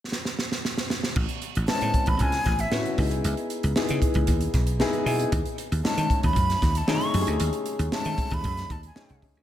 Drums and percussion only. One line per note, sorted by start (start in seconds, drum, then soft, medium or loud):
0.12 snare medium
0.25 snare medium
0.39 snare medium
0.52 snare medium
0.65 snare medium
0.78 snare medium
0.90 snare medium
1.03 snare medium
1.16 kick loud
1.16 crash medium
1.29 closed hi-hat soft
1.42 closed hi-hat medium
1.55 closed hi-hat soft
1.68 snare loud
1.81 closed hi-hat medium
1.94 kick medium
1.94 closed hi-hat medium
2.06 kick medium
2.06 closed hi-hat soft
2.19 kick medium
2.19 closed hi-hat medium
2.32 snare soft
2.32 closed hi-hat soft
2.45 kick medium
2.45 snare soft
2.45 closed hi-hat medium
2.59 closed hi-hat medium
2.72 snare loud
2.85 closed hi-hat soft
2.98 kick medium
2.98 open hi-hat medium
3.11 closed hi-hat medium
3.24 closed hi-hat medium
3.37 closed hi-hat soft
3.50 closed hi-hat medium
3.63 closed hi-hat soft
3.76 snare loud
3.89 closed hi-hat medium
4.02 kick medium
4.02 closed hi-hat medium
4.14 kick medium
4.14 closed hi-hat soft
4.27 kick medium
4.27 closed hi-hat medium
4.41 closed hi-hat medium
4.54 kick medium
4.54 snare soft
4.54 closed hi-hat medium
4.67 closed hi-hat medium
4.80 snare loud
4.93 closed hi-hat soft
5.06 open hi-hat medium
5.19 closed hi-hat medium
5.32 kick loud
5.32 closed hi-hat medium
5.46 closed hi-hat soft
5.58 closed hi-hat medium
5.72 closed hi-hat medium
5.85 snare loud
5.98 closed hi-hat medium
6.10 kick medium
6.10 closed hi-hat medium
6.23 kick medium
6.23 closed hi-hat soft
6.36 kick medium
6.36 closed hi-hat medium
6.50 snare soft
6.50 closed hi-hat medium
6.62 kick medium
6.62 snare soft
6.62 closed hi-hat medium
6.75 closed hi-hat medium
6.88 snare loud
7.01 closed hi-hat soft
7.14 open hi-hat medium
7.27 closed hi-hat medium
7.40 closed hi-hat medium
7.53 closed hi-hat soft
7.66 closed hi-hat medium
7.79 closed hi-hat medium
7.92 snare loud
8.05 closed hi-hat medium
8.18 kick medium
8.18 closed hi-hat medium
8.31 kick medium
8.31 closed hi-hat soft
8.44 kick medium
8.44 closed hi-hat medium
8.57 snare soft
8.57 closed hi-hat medium
8.70 kick medium
8.70 closed hi-hat medium
8.83 closed hi-hat medium
8.96 snare loud
9.09 closed hi-hat soft
9.22 kick medium
9.22 open hi-hat medium
9.35 closed hi-hat medium